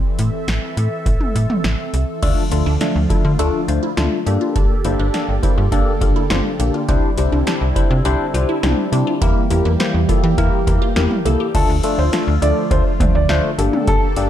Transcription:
Already playing: analog synth pad E3 C4 A4 E5
0.19 fm bass A2, closed hi-hat
0.48 fm bass A1, snare, closed hi-hat
0.77 fm bass A2, closed hi-hat
1.06 fm bass A1, kick, closed hi-hat
1.21 mid tom
1.35 fm bass A2, closed hi-hat
1.50 mid tom
1.64 fm bass A1, snare, closed hi-hat
1.94 fm bass C2, closed hi-hat
2.22 fm bass D2, analog synth pad D3 F3 A3 F4, tine electric piano A3 D4 F4 A4, synth arpeggio sound D4, kick, closed hi-hat, crash
2.51 fm bass D2, tine electric piano A3 D4 F4 A4, synth arpeggio sound F4, closed hi-hat
2.66 fm bass D2, synth arpeggio sound D4
2.81 tine electric piano A3 D4 F4 A4, synth arpeggio sound D4, snare, closed hi-hat
2.96 fm bass D2
3.10 tine electric piano A3 D4 F4 A4, synth arpeggio sound E4, kick, closed hi-hat
3.25 fm bass D3, synth arpeggio sound F4
3.39 fm bass D2, tine electric piano A3 D4 F4 A4, synth arpeggio sound D4, closed hi-hat
3.68 fm bass D2, tine electric piano A3 D4 F4 C5, synth arpeggio sound F4, closed hi-hat
3.83 synth arpeggio sound E4
3.97 fm bass D2, tine electric piano A3 D4 F4 A4, synth arpeggio sound F4, snare, closed hi-hat, mid tom
4.26 fm bass G2, analog synth pad D3 A#3 G4 A4, tine electric piano A#3 D4 G4 A4, synth arpeggio sound G4, closed hi-hat
4.41 synth arpeggio sound F4
4.56 fm bass G1, synth arpeggio sound D4, kick, closed hi-hat
4.85 fm bass G1, tine electric piano A#3 D4 G4 C5, synth arpeggio sound E4, closed hi-hat
4.99 fm bass G1, synth arpeggio sound D4
5.14 tine electric piano A#3 D4 G4 A4, synth arpeggio sound D4, snare, closed hi-hat
5.29 fm bass G1
5.43 tine electric piano A#3 D4 G4 C5, synth arpeggio sound E4, kick, closed hi-hat
5.58 fm bass G2, synth arpeggio sound F4
5.72 fm bass G1, tine electric piano A#3 D4 G4 A4, synth arpeggio sound D4, kick, closed hi-hat
6.01 fm bass G1, tine electric piano A#3 D4 G4 A4, synth arpeggio sound F4, kick, closed hi-hat
6.16 synth arpeggio sound E4
6.30 fm bass G1, tine electric piano A#3 D4 G4 C5, synth arpeggio sound F4, snare, closed hi-hat, mid tom
6.60 fm bass A#1, tine electric piano A#3 D4 G4 A4, synth arpeggio sound G4, closed hi-hat
6.74 synth arpeggio sound F4
6.89 fm bass C2, analog synth pad G3 C4 E4, synth arpeggio sound C4, tine electric piano D4 E4 G4 C5, kick, closed hi-hat
7.18 fm bass C2, tine electric piano D4 E4 G4 C5, synth arpeggio sound E4, closed hi-hat
7.32 fm bass C2, synth arpeggio sound D4
7.47 synth arpeggio sound D4, tine electric piano D4 E4 G4 C5, snare, closed hi-hat
7.61 fm bass C2
7.76 tine electric piano D4 E4 G4 C5, synth arpeggio sound E4, kick, closed hi-hat
7.90 fm bass C3, synth arpeggio sound F4
8.05 fm bass C2, synth arpeggio sound D4, tine electric piano D4 E4 G4 C5, closed hi-hat
8.34 fm bass C2, tine electric piano D4 E4 G4 C5, synth arpeggio sound F4, closed hi-hat
8.49 synth arpeggio sound E4
8.63 fm bass C2, tine electric piano D4 E4 G4 C5, synth arpeggio sound F4, snare, closed hi-hat, mid tom
8.92 fm bass C3, tine electric piano D4 E4 G4 C5, synth arpeggio sound G4, closed hi-hat
9.07 synth arpeggio sound F4
9.21 fm bass E2, analog synth pad E3 A#3 G4, tine electric piano A#3 E4 G4 A#4, synth arpeggio sound E4, kick, closed hi-hat
9.51 fm bass E2, tine electric piano A#3 E4 G4 A#4, synth arpeggio sound G4, closed hi-hat
9.65 fm bass E2, synth arpeggio sound E4
9.80 tine electric piano A#3 E4 G4 C5, synth arpeggio sound E4, snare, closed hi-hat
9.94 fm bass E2
10.09 tine electric piano A#3 E4 G4 A4, synth arpeggio sound F4, kick, closed hi-hat
10.24 fm bass E3, synth arpeggio sound G4
10.38 fm bass E2, tine electric piano A#3 E4 G4 A#4, synth arpeggio sound E4, kick, closed hi-hat
10.67 fm bass E2, tine electric piano A#3 E4 G4 A#4, synth arpeggio sound G4, kick, closed hi-hat
10.82 synth arpeggio sound F4
10.96 fm bass E2, tine electric piano A#3 E4 G4 A#4, synth arpeggio sound G4, snare, closed hi-hat, mid tom
11.11 mid tom
11.25 fm bass C2, tine electric piano A#3 E4 G4 A4, synth arpeggio sound A4, closed hi-hat
11.40 synth arpeggio sound G4
11.55 fm bass D2, analog synth pad D3 F3 A3 F4, tine electric piano A3 D4 F4 A4, grand piano A4, kick, closed hi-hat, crash
11.69 fm bass D2
11.83 tine electric piano A3 D4 F4 A4, closed hi-hat
11.98 fm bass D2, grand piano C5
12.13 tine electric piano A3 D4 F4 A4, snare, closed hi-hat
12.28 fm bass D2
12.42 fm bass D2, tine electric piano A3 D4 F4 A4, grand piano D5, closed hi-hat
12.71 fm bass D2, tine electric piano A3 D4 F4 A4, grand piano C5, kick, closed hi-hat
13.00 fm bass D2, tine electric piano A3 D4 F4 C5, kick, closed hi-hat, mid tom
13.15 fm bass D2, grand piano D5
13.29 fm bass D2, tine electric piano A3 D4 F4 C5, snare, closed hi-hat
13.58 fm bass G1, tine electric piano A#3 D4 G4 A4, analog synth pad A#3 G4 A4, closed hi-hat
13.73 mid tom
13.88 fm bass G1, grand piano A4, kick, closed hi-hat
14.16 fm bass G1, tine electric piano A#3 D4 G4 A4, closed hi-hat

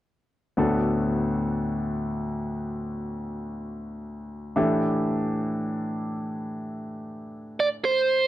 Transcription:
0.57 grand piano D2 A2 B3 D4 F#4 A4
4.56 grand piano A2 E3 D4 E4 G4 A4
7.60 lead electric guitar D5
7.85 lead electric guitar C5

